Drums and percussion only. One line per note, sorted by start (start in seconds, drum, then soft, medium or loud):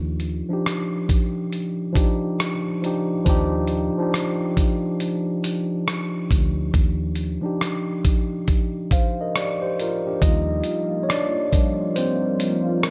0.20 closed hi-hat soft
0.66 cross-stick loud
0.66 closed hi-hat medium
1.09 kick medium
1.09 closed hi-hat medium
1.53 closed hi-hat medium
1.95 kick medium
1.95 closed hi-hat medium
2.40 cross-stick loud
2.40 closed hi-hat medium
2.84 closed hi-hat medium
3.26 kick medium
3.26 closed hi-hat medium
3.67 closed hi-hat medium
4.14 cross-stick loud
4.14 closed hi-hat medium
4.57 kick medium
4.57 closed hi-hat medium
5.00 closed hi-hat medium
5.44 closed hi-hat medium
5.88 cross-stick medium
5.88 closed hi-hat medium
6.31 kick medium
6.31 closed hi-hat medium
6.74 kick loud
6.74 closed hi-hat medium
7.15 closed hi-hat medium
7.61 cross-stick loud
7.61 closed hi-hat medium
8.05 kick medium
8.05 closed hi-hat medium
8.48 kick medium
8.48 closed hi-hat medium
8.91 kick medium
8.91 closed hi-hat medium
9.36 cross-stick loud
9.36 closed hi-hat medium
9.79 closed hi-hat medium
10.22 kick loud
10.22 closed hi-hat medium
10.64 closed hi-hat medium
11.10 cross-stick loud
11.10 closed hi-hat loud
11.53 kick medium
11.53 closed hi-hat medium
11.96 closed hi-hat medium
12.40 closed hi-hat medium
12.83 cross-stick loud
12.83 closed hi-hat medium